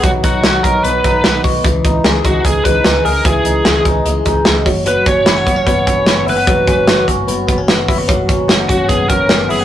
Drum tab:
HH |xxxxxxxo|xxxxxxxo|xxxxxxxo|xxxxxxxo|
SD |--o---o-|--o---o-|--o---o-|--o---o-|
BD |oo-o-o-o|oo-ooo--|o--o-o-o|-o-ooo--|

HH |xxxxxxxo|xxxxxxxo|
SD |--o---o-|--o---o-|
BD |oo-o-o-o|oo-ooo--|